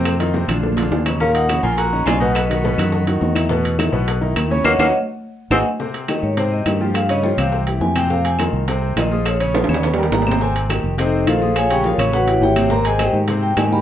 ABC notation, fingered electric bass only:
X:1
M:4/4
L:1/8
Q:1/4=209
K:Ebdor
V:1 name="Fingered electric bass" clef=bass
F,,3 B,,,3 E,,2- | E,,3 B,,,3 _C,,2- | _C,,3 G,,3 _F,,2- | _F,,3 =B,,,3 E,,2 |
E,, E,, z4 A,,, z | [K:Ab] z3 A,,3 G,,2- | G,,3 C,,3 F,,2- | F,,3 C,,3 B,,,2- |
B,,,3 E,,3 A,,,2- | A,,,3 F,,,3 B,,,2- | B,,,3 =A,,,3 _A,,,2- | A,,,3 A,,3 A,,2 |]